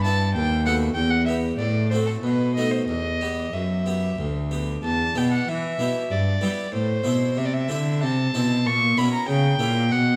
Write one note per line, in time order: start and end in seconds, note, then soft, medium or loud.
0.00 0.30 G2 soft
0.00 0.36 G2 medium
0.00 0.34 A5 medium
0.05 0.27 B3 soft
0.05 0.27 E4 soft
0.34 0.95 D#2 medium
0.34 0.93 D#2 soft
0.34 0.65 G5 medium
0.66 0.88 A3 soft
0.66 0.88 B3 soft
0.66 0.89 F#4 soft
0.66 0.74 F#5 medium
0.95 1.55 E2 soft
0.95 1.58 E2 medium
0.95 1.12 G5 medium
1.10 1.25 F#5 medium
1.26 1.51 B3 soft
1.26 1.51 G4 soft
1.26 1.34 E5 medium
1.58 2.20 A2 soft
1.58 2.22 A2 medium
1.58 1.90 D5 medium
1.90 2.15 A3 soft
1.90 2.15 C4 soft
1.90 2.16 F#4 soft
1.90 1.97 C5 medium
2.06 2.13 A4 medium
2.22 2.84 B2 soft
2.22 2.87 B2 soft
2.22 2.55 B4 medium
2.55 2.80 A3 soft
2.55 2.80 D#4 soft
2.55 2.80 F#4 soft
2.55 2.72 D#5 medium
2.71 2.87 C5 medium
2.87 3.49 E2 soft
2.87 3.52 E2 soft
2.87 3.55 D#5 medium
3.21 3.45 B3 soft
3.21 3.68 G4 soft
3.53 4.17 F#2 soft
3.53 4.15 F#2 soft
3.53 4.51 E5 medium
3.86 4.09 B3 soft
3.86 4.33 G4 soft
4.18 4.83 D2 soft
4.18 4.80 D2 soft
4.51 4.75 B3 soft
4.51 4.75 G4 soft
4.83 5.13 E2 soft
4.83 5.14 E2 medium
4.83 5.19 A5 medium
5.15 5.45 B2 soft
5.15 5.47 B2 medium
5.15 5.62 B3 soft
5.15 5.62 E4 soft
5.15 5.62 G4 soft
5.15 5.31 G5 medium
5.32 5.50 F#5 medium
5.48 5.79 E3 medium
5.48 5.77 E3 soft
5.48 6.13 E5 medium
5.79 6.08 B2 soft
5.79 5.88 B2 soft
5.79 6.02 B3 soft
5.79 6.02 E4 soft
5.79 6.03 G4 soft
6.11 6.39 G2 soft
6.11 6.42 G2 medium
6.11 6.74 D5 medium
6.41 6.70 G3 soft
6.41 6.50 G3 soft
6.41 6.65 B3 soft
6.41 6.65 E4 soft
6.41 6.65 G4 soft
6.72 7.01 A2 soft
6.72 7.05 A2 medium
6.72 7.39 C5 medium
7.04 7.33 B2 soft
7.04 7.39 B2 soft
7.04 7.51 C4 soft
7.04 7.51 E4 soft
7.04 7.51 C5 soft
7.36 7.66 C3 soft
7.36 7.73 C3 medium
7.36 7.47 E5 medium
7.45 7.55 D5 medium
7.54 8.03 E5 medium
7.68 7.98 D3 soft
7.68 8.05 D3 medium
7.68 8.15 C4 soft
7.68 8.15 E4 soft
7.68 8.16 C5 soft
8.02 8.31 C3 soft
8.02 8.34 C3 medium
8.02 8.68 A5 medium
8.34 8.62 B2 medium
8.34 8.68 B2 medium
8.34 8.57 C4 soft
8.34 8.57 E4 soft
8.34 8.57 C5 soft
8.65 8.93 A#2 soft
8.65 8.96 A#2 medium
8.65 8.99 C#6 medium
8.97 9.05 B2 medium
8.97 9.25 B2 soft
8.97 9.42 C#4 soft
8.97 9.42 E4 soft
8.97 9.42 A#4 soft
8.97 9.13 B5 medium
9.13 9.28 A#5 medium
9.27 9.55 C#3 soft
9.27 9.59 C#3 medium
9.27 9.93 G5 medium
9.59 9.87 A#2 medium
9.59 9.93 A#2 medium
9.59 9.82 C#4 soft
9.59 9.82 E4 soft
9.59 9.83 A#4 soft
9.89 10.16 B2 soft
9.89 10.16 B2 medium
9.89 10.16 F#5 medium